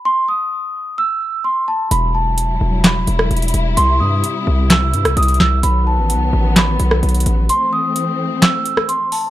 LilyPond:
<<
  \new Staff \with { instrumentName = "Celesta" } { \time 4/4 \key e \minor \tempo 4 = 129 c'''8 dis'''4. e'''4 c'''8 a''8 | b''8 a''4. b''2 | c'''8 dis'''4. e'''4 dis'''8 e'''8 | b''8 a''4. b''2 |
c'''8 dis'''4. e'''4 c'''8 a''8 | }
  \new Staff \with { instrumentName = "String section" } { \clef bass \time 4/4 \key e \minor << { r1 | <g e'>1~ | <g e'>1 | <fis b>1 |
<a c'>1 | } \\ { r1 | fis1 | c1 | dis1 |
e1 | } >> }
  \new Staff \with { instrumentName = "808-style bass" } { \clef bass \time 4/4 \key e \minor r1 | e,,4. e,,4 e,,8 e,,8 e,,8 | c,8 g,8 r8 c,4 g,16 c,16 c,8 c,8 | b,,8. a,,16. b,,16. a,,4 b,,8 b,,8 a,,8 |
r1 | }
  \new DrumStaff \with { instrumentName = "Drums" } \drummode { \time 4/4 r4 r4 r4 r4 | hh4 hh4 <hc hh sn>8 hh16 ss16 hh32 hh32 hh32 hh32 hh8 | hh4 hh4 <hc hh sn>8 hh16 <hh ss>16 hh32 hh32 hh32 hh32 sn8 | hh4 hh4 <hc hh sn>8 hh16 ss16 hh32 hh32 hh32 hh32 hh8 |
hh4 hh4 <hc hh sn>8 hh16 ss16 hh8 hho8 | }
>>